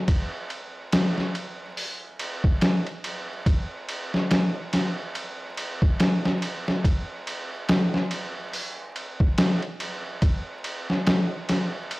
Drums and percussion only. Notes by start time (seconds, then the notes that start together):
0.08 kick, ride
0.50 ride
0.92 snare, ride
1.18 snare
1.35 ride
1.77 open hi-hat
2.19 ride
2.44 kick
2.61 snare, ride
2.87 ride
3.04 ride
3.46 kick, ride
3.89 ride
4.14 snare
4.31 snare, ride
4.73 snare, ride
5.15 ride
5.57 ride
5.82 kick
6.00 snare, ride
6.25 snare
6.42 ride
6.68 snare
6.84 kick, ride
7.27 ride
7.69 snare, ride
7.94 snare
8.11 ride
8.53 open hi-hat
8.96 ride
9.20 kick
9.38 snare, ride
9.62 ride
9.80 ride
10.22 kick, ride
10.64 ride
10.90 snare
11.07 snare, ride
11.49 snare, ride
11.91 ride